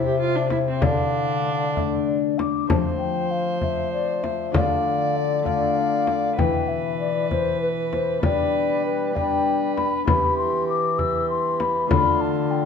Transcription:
Already playing: C3 C4 E4 E5
0.05 G4
0.20 F4
0.36 D4
0.50 E4, frame drum
0.69 C4
0.82 D3 D4 F5, frame drum
1.75 A3 D4 E5, frame drum
2.07 D5
2.39 D6, frame drum
2.67 F3 A3 C4 C5 A5, frame drum
2.99 G5
3.31 F5
3.62 E5, frame drum
3.93 D5
4.23 E5, frame drum
4.50 D3 A3 D4 F4
4.54 D3 D5 F5, frame drum
5.17 D5
5.42 A3 D4 F4 D5 F5, frame drum
6.07 frame drum
6.36 B2 E3 E4 B4 G5, frame drum
6.68 E5
7.00 D5
7.31 C5, frame drum
7.62 B4
7.93 C5, frame drum
8.20 G3 B3 D4 B4 D5, frame drum
8.86 B4
9.12 B3 D4 B4 G5
9.16 frame drum
9.76 B5, frame drum
10.04 E3 B3 E4 G4 B5, frame drum
10.38 C6
10.69 D6
10.97 G4 E6, frame drum
11.30 C6
11.60 B5, frame drum
11.87 D3 A3 D4 F4 B5
11.91 D3, frame drum
12.21 A5
12.51 G5

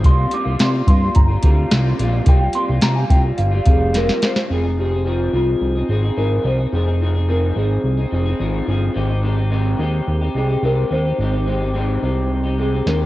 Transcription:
0.03 C2 C3 G3 A#3 F4 C6, kick, closed hi-hat
0.31 C3 G3 A#3 F4 D6, closed hi-hat
0.44 C2 G3 A#3 F4
0.59 C3 G3 A#3 F4 C6, snare, closed hi-hat
0.72 G3 A#3 F4
0.87 G2 C3 G3 A#3 F4 C6, kick, closed hi-hat
1.00 G3 A#3 F4
1.15 G1 A#5, kick, closed hi-hat
1.28 G3 A#3 F4
1.42 D2 C3 G3 A#3 F4, kick, closed hi-hat
1.70 C2 C3 G3 A#3 F4, snare, closed hi-hat
1.98 A#1 C3 G3 A#3 F4, closed hi-hat
2.26 C2 C3 G3 A#3 F4 G5, kick, closed hi-hat
2.41 G3 A#3 F4
2.53 C3 G3 A#3 C6, closed hi-hat
2.58 F4
2.68 C2 G3 A#3 F4
2.82 C3 G3 A#3 F4 A#5, snare, closed hi-hat
2.95 G3 A#3 F4 G#5
3.08 C2 C3 G3 A#3 F4 G5, kick, closed hi-hat
3.23 G3 A#3 F4
3.37 G1 F5, closed hi-hat
3.51 G3 A#3 F4
3.65 F1 C3 G3 A#3 F4, kick, closed hi-hat
3.70 G#4
3.93 C3 G3 A#3 F4 A#4, snare, closed hi-hat
4.09 snare
4.22 C3 G3 A#3 F4 C5, snare, closed hi-hat
4.36 snare
4.49 F1 F3 C4 D#4 G#4
4.63 C4 D#4 G#4
4.78 F3 C4 D#4 G4 G#4
4.91 C4 D#4 G#4
5.05 F3 C4 D#4 F4 G#4
5.33 C2 F3 C4 D#4 F4 G#4
5.61 C2
5.75 C4 D#4 G#4
5.89 G#1 F3 C4 D#4 G#4
6.03 C4 D#4 G#4
6.17 G#1 F3 C4 D#4 G#4 A#4
6.44 C2 F3 C4 D#4 G#4 C5
6.58 C4 D#4 G#4
6.72 F1 F3 C4 D#4 G#4
6.86 C4 D#4 G#4
7.01 F3 C4 D#4 G#4
7.14 C4 D#4 G#4
7.28 F3 C4 D#4 G#4 A#4
7.56 G#1 F3 C4 D#4 G#4
7.84 C2
7.97 C4 D#4 G#4
8.11 F1 F3 C4 D#4 G#4
8.25 C4 D#4 G#4
8.39 G#1 F3 C4 D#4 G#4
8.66 G1 F3 C4 D#4 G#4
8.94 G#1 G#3 C4 D#4 G4
9.08 C4 D#4 G4
9.22 G#3 C4 D#4 G4
9.37 C4 D#4 G4
9.50 G#3 C4 D#4 G4
9.78 D#2 G#3 C4 D#4 G4
10.07 D#2
10.21 C4 D#4 G4
10.35 C2 G#3 C4 D#4 G4 G#4
10.49 C4 D#4 G4
10.62 C2 G#3 C4 D#4 G4 A#4
10.91 D#2 G#3 C4 D#4 G4 C5
11.05 C4 D#4 G4
11.19 G#1 G#3 C4 D#4 G4
11.33 C4 D#4 G4
11.46 G#3 C4 D#4 G4
11.60 C4 D#4 G4
11.74 G#3 C4 D#4 G4
12.01 C2 G#3 C4 D#4 G4
12.43 C4 D#4 G4
12.58 G#3 C4 D#4 G4 G#4
12.73 C4 D#4 G4
12.86 D#2 G#3 C4 D#4 G4 A#4, snare

